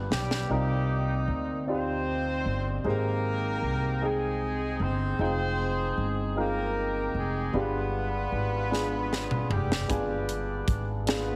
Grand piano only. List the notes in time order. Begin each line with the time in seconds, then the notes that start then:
Already playing: G2 B3 D4 F4 G4 B4
0.49 C3 C4 D#4 F4 A#4 D5
1.67 C4 D#4 F4 G4 D5
2.84 G#2 G#3 A#3 D#4 G4 C5
2.91 C4
4.01 G#3 C4 D#4 G#4 G5
5.19 G#3 C4 D#4 F4 G5
6.36 G#3 C4 D#4 F4 A#4
7.53 G2 G#3 B3 D4 F4 G4
8.70 G#3 B3 D4 F4 G#4
9.88 G2 G#3 B3 D4 F4 G#5
11.06 G#3 A#3 D4 F4 G#4
11.13 B3